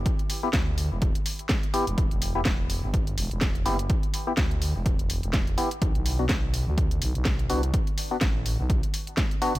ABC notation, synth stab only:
X:1
M:4/4
L:1/16
Q:"Swing 16ths" 1/4=125
K:Em
V:1 name="Synth stab"
z3 [B,EG] z8 z2 [B,EG] z | z3 [B,EG] z8 z2 [B,EG] z | z3 [B,EG] z8 z2 [B,EG] z | z3 [B,DF] z8 z2 [B,DF] z |
z3 [B,DF] z8 z2 [B,DF] z |]